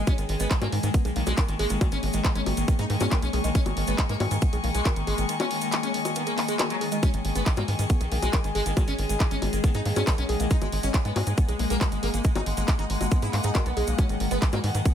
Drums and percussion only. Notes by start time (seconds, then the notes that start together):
0.07 kick, closed hi-hat, high bongo, shaker
0.18 closed hi-hat, shaker
0.29 open hi-hat
0.40 closed hi-hat, shaker
0.51 kick, clap, closed hi-hat, shaker
0.62 closed hi-hat, high bongo, shaker
0.72 open hi-hat
0.83 closed hi-hat, shaker
0.94 kick, closed hi-hat, shaker
1.05 closed hi-hat, shaker
1.16 open hi-hat
1.26 closed hi-hat, high bongo, shaker
1.38 kick, clap, closed hi-hat, shaker
1.48 closed hi-hat, shaker
1.59 open hi-hat
1.70 closed hi-hat, shaker
1.81 kick, closed hi-hat, high bongo, shaker
1.92 closed hi-hat, shaker
2.03 open hi-hat
2.13 closed hi-hat, shaker
2.25 kick, clap, closed hi-hat, shaker
2.35 closed hi-hat, shaker
2.46 open hi-hat, high bongo
2.57 closed hi-hat, shaker
2.68 kick, closed hi-hat, shaker
2.79 closed hi-hat, shaker
2.90 open hi-hat
3.00 closed hi-hat, high bongo, shaker
3.12 kick, clap, closed hi-hat, shaker
3.22 closed hi-hat, shaker
3.33 open hi-hat
3.44 closed hi-hat, shaker
3.55 kick, closed hi-hat, shaker
3.66 closed hi-hat, high bongo, shaker
3.77 open hi-hat
3.87 closed hi-hat, shaker
3.98 kick, clap, closed hi-hat, shaker
4.09 closed hi-hat, shaker
4.20 open hi-hat, high bongo
4.31 closed hi-hat, shaker
4.42 kick, closed hi-hat, shaker
4.53 closed hi-hat, shaker
4.64 open hi-hat
4.75 closed hi-hat, shaker
4.85 kick, clap, closed hi-hat, high bongo, shaker
4.96 closed hi-hat, shaker
5.07 open hi-hat
5.18 closed hi-hat, shaker
5.29 closed hi-hat, shaker
5.40 closed hi-hat, high bongo, shaker
5.51 open hi-hat
5.61 closed hi-hat, shaker
5.72 clap, closed hi-hat, shaker
5.83 closed hi-hat, shaker
5.94 open hi-hat
6.05 closed hi-hat, high bongo, shaker
6.15 closed hi-hat, shaker
6.26 closed hi-hat, shaker
6.38 clap, open hi-hat
6.48 closed hi-hat, shaker
6.59 clap, closed hi-hat, high bongo, shaker
6.70 closed hi-hat, shaker
6.81 open hi-hat
6.92 closed hi-hat, shaker
7.03 kick, closed hi-hat, high bongo, shaker
7.14 closed hi-hat, shaker
7.25 open hi-hat
7.35 closed hi-hat, shaker
7.46 kick, clap, closed hi-hat, shaker
7.56 closed hi-hat, high bongo, shaker
7.68 open hi-hat
7.79 closed hi-hat, shaker
7.90 kick, closed hi-hat, shaker
8.01 closed hi-hat, shaker
8.12 open hi-hat
8.22 closed hi-hat, high bongo, shaker
8.33 kick, clap, closed hi-hat, shaker
8.44 closed hi-hat, shaker
8.55 open hi-hat
8.66 closed hi-hat, shaker
8.77 kick, closed hi-hat, high bongo, shaker
8.88 closed hi-hat, shaker
8.99 open hi-hat
9.09 closed hi-hat, shaker
9.20 kick, clap, closed hi-hat, shaker
9.31 closed hi-hat, shaker
9.42 open hi-hat, high bongo
9.53 closed hi-hat, shaker
9.64 kick, closed hi-hat, shaker
9.74 closed hi-hat, shaker
9.85 open hi-hat
9.96 closed hi-hat, high bongo, shaker
10.07 kick, clap, closed hi-hat, shaker
10.18 closed hi-hat, shaker
10.29 open hi-hat
10.40 closed hi-hat, shaker
10.50 kick, closed hi-hat, shaker
10.61 closed hi-hat, high bongo, shaker
10.72 open hi-hat
10.83 closed hi-hat, shaker
10.94 kick, clap, closed hi-hat, shaker
11.05 closed hi-hat, shaker
11.16 open hi-hat, high bongo
11.27 closed hi-hat, shaker
11.38 kick, closed hi-hat, shaker
11.48 closed hi-hat, shaker
11.59 open hi-hat
11.70 closed hi-hat, shaker
11.81 kick, clap, closed hi-hat, high bongo, shaker
11.92 closed hi-hat, shaker
12.03 open hi-hat
12.14 closed hi-hat, shaker
12.24 kick, closed hi-hat, shaker
12.35 closed hi-hat, high bongo, shaker
12.46 open hi-hat
12.57 closed hi-hat, shaker
12.68 kick, clap, closed hi-hat, shaker
12.79 closed hi-hat, shaker
12.90 open hi-hat
13.01 closed hi-hat, high bongo, shaker
13.11 kick, closed hi-hat, shaker
13.22 closed hi-hat, shaker
13.33 clap, open hi-hat
13.43 closed hi-hat, shaker
13.55 kick, clap, closed hi-hat, high bongo, shaker
13.66 closed hi-hat, shaker
13.77 open hi-hat
13.87 closed hi-hat, shaker
13.98 kick, closed hi-hat, high bongo, shaker
14.09 closed hi-hat, shaker
14.20 open hi-hat
14.31 closed hi-hat, shaker
14.42 kick, clap, closed hi-hat, shaker
14.53 closed hi-hat, high bongo, shaker
14.64 open hi-hat
14.75 closed hi-hat, shaker
14.85 kick, closed hi-hat, shaker